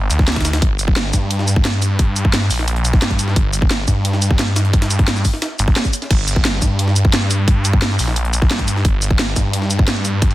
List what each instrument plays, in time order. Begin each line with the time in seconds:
0.11 detuned saw bass D2, closed hi-hat, shaker
0.19 kick, snare
0.28 snare, closed hi-hat
0.32 snare, closed hi-hat
0.36 kick, snare, closed hi-hat
0.41 snare, closed hi-hat
0.45 snare, closed hi-hat, shaker
0.53 snare, closed hi-hat
0.62 detuned saw bass G1, kick, closed hi-hat
0.79 closed hi-hat, shaker
0.88 kick
0.96 snare, closed hi-hat
1.13 detuned saw bass G2, kick, snare, closed hi-hat, shaker
1.31 closed hi-hat
1.39 snare
1.48 closed hi-hat, shaker
1.56 kick
1.65 snare, closed hi-hat
1.74 closed hi-hat
1.82 closed hi-hat, shaker
1.99 kick, closed hi-hat
2.16 closed hi-hat, shaker
2.25 kick
2.33 snare, closed hi-hat
2.42 snare
2.51 detuned saw bass A#1, open hi-hat, shaker
2.59 snare
2.68 closed hi-hat
2.76 closed hi-hat
2.85 closed hi-hat, shaker
2.93 kick, snare
3.02 detuned saw bass G2, snare, closed hi-hat
3.11 kick, closed hi-hat
3.19 closed hi-hat, shaker
3.28 snare
3.36 detuned saw bass G1, kick, closed hi-hat
3.53 closed hi-hat, shaker
3.62 kick
3.71 snare, closed hi-hat
3.88 detuned saw bass G2, kick, snare, closed hi-hat, shaker
4.05 closed hi-hat
4.13 snare
4.22 closed hi-hat, shaker
4.31 kick
4.39 snare, closed hi-hat
4.48 closed hi-hat
4.56 snare, closed hi-hat, shaker
4.65 closed hi-hat
4.73 kick, closed hi-hat
4.82 snare, closed hi-hat
4.91 closed hi-hat, shaker
4.99 kick, closed hi-hat
5.08 snare, closed hi-hat
5.16 snare, shaker
5.25 kick, open hi-hat, shaker
5.33 snare
5.42 snare, closed hi-hat
5.59 detuned saw bass G1, closed hi-hat, shaker
5.68 kick, snare
5.76 snare, closed hi-hat
5.85 kick, closed hi-hat, shaker
5.93 closed hi-hat, shaker
6.02 snare, closed hi-hat
6.11 detuned saw bass G1, kick, closed hi-hat, crash
6.28 closed hi-hat, shaker
6.36 kick
6.45 snare, closed hi-hat
6.62 detuned saw bass G2, kick, snare, closed hi-hat, shaker
6.79 closed hi-hat
6.88 snare
6.96 closed hi-hat, shaker
7.05 kick
7.13 snare, closed hi-hat
7.22 closed hi-hat
7.31 closed hi-hat, shaker
7.48 kick, closed hi-hat
7.65 closed hi-hat, shaker
7.73 kick
7.82 snare, closed hi-hat
7.91 snare
7.99 detuned saw bass A#1, open hi-hat, shaker
8.08 snare
8.16 closed hi-hat
8.25 closed hi-hat
8.33 closed hi-hat, shaker
8.42 kick, snare
8.51 detuned saw bass G2, snare, closed hi-hat
8.59 kick, closed hi-hat
8.68 closed hi-hat, shaker
8.76 snare
8.85 detuned saw bass G1, kick, closed hi-hat
9.02 closed hi-hat, shaker
9.11 kick
9.19 snare, closed hi-hat
9.36 detuned saw bass G2, kick, snare, closed hi-hat, shaker
9.53 closed hi-hat
9.62 snare
9.71 closed hi-hat, shaker
9.79 kick
9.88 snare, closed hi-hat
9.96 closed hi-hat
10.05 closed hi-hat, shaker
10.22 kick, closed hi-hat
10.31 closed hi-hat